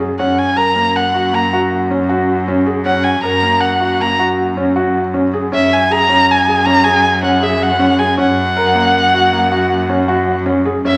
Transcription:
Already playing: F#2
0.00 G#4
0.18 F#2 C#4 F#5
0.39 G#5
0.56 A#4 A#5
0.76 A#3
0.96 F#5
1.14 F#4
1.33 A#3 A#5
1.53 F#4
1.91 C#4
2.09 F#4
2.48 C#4
2.66 G#4
2.85 C#4 F#5
3.04 G#5
3.23 A#4 A#5
3.43 A#3
3.60 F#5
3.80 F#4
4.00 A#3 A#5
4.19 F#4
4.57 C#4
4.76 F#4
5.14 C#4
5.33 G#4
5.52 F#2 C#4 E5
5.73 G#5
5.91 G#4 A#5
6.09 C#4
6.31 G#5
6.48 G#4
6.65 C#4 A#5
6.84 G#4 G#5
7.23 C#4 F#5
7.42 G#4 E5
7.62 F#5
7.79 C#4
7.99 G#4 G#5
8.18 F#2 C#4 F#5
8.57 A#4
8.75 A#3
9.14 F#4
9.33 A#3
9.52 F#4
9.89 C#4
10.08 F#4
10.46 C#4
10.65 G#4
10.84 F#2 C#4 E5

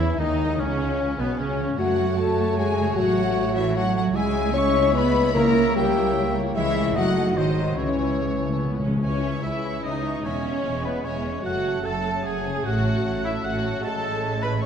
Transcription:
Already playing: E2 C#3 E3 G#3 C#4 E4 G#4 E5
0.00 C#5
0.09 G#5
0.18 D#2 D#3 D#4 G#4 D#5
0.30 C#4
0.39 G#3
0.49 C#4
0.59 C#2 E2 C#3 C#4 C#5
0.69 E3
0.80 C#4
0.90 G#4
1.00 C#4
1.10 C#5
1.19 B1 B2 B3 B4 G#5
1.29 C#5
1.37 C#2 C#3 C#4 G#4 C#5
1.50 G#3
1.59 E3
1.69 G#3
1.78 F#2 F#3 A3 F#4 C#5 F#5
1.89 C#3
1.98 C#4
2.08 F#4
2.17 A3 A4 C#5 A5
2.28 C#5
2.38 F#5
2.48 C#5
2.58 G#3 F#4 G#4 G#5
2.68 A3
2.79 C#3
2.88 A3
2.97 A1 A2 F#3 A3 F#4 C#5 F#5
3.08 F#3
3.17 C#4
3.27 F#4
3.37 A4
3.47 C#5
3.56 E3 E4 E5 F#5
3.67 C#5
3.75 F#3 A3 F#4 C#5 F#5
3.87 A3
3.95 F#3 F#4 F#5
4.07 A3
4.15 C#2 C#3 G#3 E4 G#4 C#5 E5 G#5
4.27 G#3
4.37 E4
4.46 G#4
4.54 G#3 C#4 C#5 E5 C#6
4.66 E5
4.76 G#5
4.86 E5
4.94 B3 G#4 B4 B5
5.06 C#4
5.16 G#3
5.26 C#4
5.35 C#3 A#3 A#4 E5 A#5
5.46 G3
5.56 C#4
5.66 E4
5.75 G3 A#3 G4 A#4 E5 G5
5.86 C#5
5.96 E5
6.06 C#5
6.16 E4
6.26 A#3
6.37 G3
6.47 A#3
6.56 C#2 C#3 E3 G#3 E4 C#5 E5
6.67 G#3
6.77 G#4
6.88 C#4
6.96 F#1 F#2 F#3 A3 D#4 F#4 D#5 F#5
7.08 F#3
7.18 D#4
7.28 F#4
7.36 G#1 G#2 D#3 F#3 G#3 D#4 F#4 C5 D#5
7.48 D#3
7.58 C4
7.69 F#4
7.77 C#2 C#3 E3 C#4 E4 C#5
7.90 G#3
7.95 C#3
8.01 C#3 E4
8.10 C#3 G#4
8.20 G#3 C#5
8.26 C#3
8.31 C#3 E5
8.40 C#3 A3 G#5
8.49 C#3 E5
8.57 C#3
8.61 C#3 B3 G#4
8.72 C#3 C#4
8.79 C#3 G#3 C#4
8.87 C#3
8.93 C#3 C#4
9.02 C#2 C#3 E3 G#3 C#4 C#5 G#5
9.13 G#3
9.23 E4 E5 C#6
9.33 G#4
9.42 C#2 E3 E4 C#5 E5 G#5
9.54 E5
9.64 E5 G#5 C#6
9.75 E5
9.83 C#2 D#4 G#4 C#5 D#5 G#5
9.95 C#4
10.04 G#3 E5 C#6
10.15 C#4
10.24 E1 E2 G#3 C#4 C#5 E5 G#5
10.36 E3
10.45 C#4 C#5 E5
10.55 G#4
10.63 E1 E2 C#4 E5 G#5
10.75 C#5
10.84 B3 B4 C#5 E5 G#5
10.96 C#5
11.03 E1 E2 G#3 C#4 G#4 C#5 E5 G#5
11.17 G#3
11.23 E3 C#5 E5
11.36 G#3
11.44 F#1 F#2 A3 C#4 F#4 A4 C#5 F#5
11.56 C#3
11.65 C#4 C#5 A5
11.76 F#4
11.84 F#1 F#2 A3 A4 C#5 F#5 A5
11.96 C#5
12.06 C#5 F#5 A5
12.16 C#5
12.25 F#1 F#2 F#4 G#4 A4 F#5 G#5
12.36 A3
12.46 C#3 C#5 A5
12.57 A3
12.65 A1 A2 A3 F#4 A4 C#5 F#5
12.76 F#3
12.86 C#4 C#5 A5
12.96 F#4
13.04 A1 A2 A4 F#5
13.16 C#5
13.24 E4 C#5 E5 F#5 A5
13.35 C#5
13.43 A1 A2 A3 F#4 A4 C#5 F#5
13.55 A3
13.64 F#3 C#5 A5
13.76 A3
13.83 A1 A2 G#3 C#4 A4 C#5 E5 A5
13.95 E3
14.05 C#4
14.15 E4
14.24 G#4
14.34 C#5
14.42 B4 E5 B5
14.53 C#5
14.62 G#3 E4 C#5 C#6

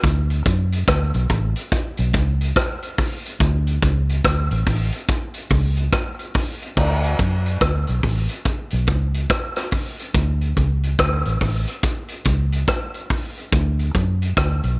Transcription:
0.03 D2, kick, closed hi-hat
0.30 closed hi-hat
0.46 F#2, kick, closed hi-hat
0.72 closed hi-hat
0.88 D2, kick, cross-stick, closed hi-hat
1.14 B1, closed hi-hat
1.30 A1, kick, closed hi-hat
1.56 closed hi-hat
1.72 kick, closed hi-hat
1.97 B1, closed hi-hat
2.13 C#2, kick, closed hi-hat
2.41 closed hi-hat
2.56 kick, cross-stick, closed hi-hat
2.82 closed hi-hat
2.98 kick, open hi-hat
3.25 closed hi-hat
3.40 D2, kick, closed hi-hat
3.67 closed hi-hat
3.82 C#2, kick, closed hi-hat
4.09 closed hi-hat
4.25 D2, kick, cross-stick, closed hi-hat
4.51 A1, closed hi-hat
4.67 A1, kick, open hi-hat
4.92 closed hi-hat
5.08 kick, closed hi-hat
5.34 closed hi-hat
5.50 C#2, kick, open hi-hat
5.77 closed hi-hat
5.92 kick, cross-stick, closed hi-hat
6.19 closed hi-hat
6.34 kick, open hi-hat
6.62 closed hi-hat
6.77 D2, kick, crash
7.03 closed hi-hat
7.19 F#2, kick, closed hi-hat
7.46 closed hi-hat
7.61 D2, kick, cross-stick, closed hi-hat
7.87 B1, closed hi-hat
8.03 A1, kick, open hi-hat
8.29 closed hi-hat
8.45 kick, closed hi-hat
8.70 B1, closed hi-hat
8.87 C#2, kick, closed hi-hat
9.14 closed hi-hat
9.30 kick, cross-stick, closed hi-hat
9.56 cross-stick, closed hi-hat
9.71 kick, open hi-hat
9.99 closed hi-hat
10.14 D2, kick, closed hi-hat
10.41 closed hi-hat
10.57 C#2, kick, closed hi-hat
10.83 closed hi-hat
10.99 D2, kick, cross-stick, closed hi-hat
11.25 A1, closed hi-hat
11.41 A1, kick, open hi-hat
11.67 closed hi-hat
11.83 kick, closed hi-hat
12.08 closed hi-hat
12.25 C#2, kick, closed hi-hat
12.52 closed hi-hat
12.68 kick, cross-stick, closed hi-hat
12.94 closed hi-hat
13.10 kick, open hi-hat
13.37 closed hi-hat
13.52 D2, kick, closed hi-hat
13.79 closed hi-hat
13.95 F#2, kick, closed hi-hat
14.22 closed hi-hat
14.37 D2, kick, cross-stick, closed hi-hat
14.64 B1, closed hi-hat

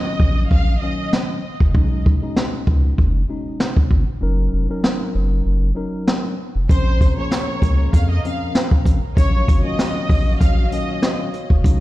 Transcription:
Already playing: A#2 D#3 F#3 C#4 D#5
0.20 A#1, kick
0.50 A#1 F5, kick
0.81 A#2 D#3 F#3 C#4 D#5
1.13 snare
1.60 F#1, kick
1.73 B1 B2 G#3 C#4 D#4, kick
2.06 kick
2.21 B2 G#3 C#4 D#4
2.36 snare
2.67 C#2, kick
2.98 F#1, kick
3.28 B2 G#3 C#4 D#4
3.60 snare
3.77 kick
3.91 G#1, kick
4.21 F#1 F#3 C#4 D#4 A#4
4.53 F1
4.69 F#3 C#4 D#4 A#4
4.84 snare
5.15 F#1
5.46 F#1
5.75 F#3 C#4 D#4 A#4
6.07 snare
6.56 F1
6.68 A#1 A#2 C#3 F3 C4 C#4 A#4 C5 A#5, kick, closed hi-hat
7.01 kick, closed hi-hat
7.16 A#2 F3 A#3 C#4 C#5
7.31 snare, closed hi-hat
7.62 C#2, kick, closed hi-hat
7.93 F2 F5, kick, closed hi-hat
8.10 D#5
8.24 A#2 F3 C4 C#4 F5, closed hi-hat
8.55 snare, closed hi-hat
8.71 kick
8.85 A#1, kick, closed hi-hat
9.15 A#1 A#2 D#3 F#3 C#4 F#4 C#5 F5, kick, closed hi-hat
9.48 G#1, kick, closed hi-hat
9.62 A#2 D#3 F#3 C#4 D#5
9.79 snare, closed hi-hat
10.09 A#1, kick, open hi-hat
10.40 A#1 F5, kick, closed hi-hat
10.70 A#2 D#3 F#3 C#4 D#5, closed hi-hat
11.02 snare, closed hi-hat
11.33 closed hi-hat
11.50 F#1, kick
11.63 B1 B2 G#3 C#4 D#4 G#5, kick, closed hi-hat

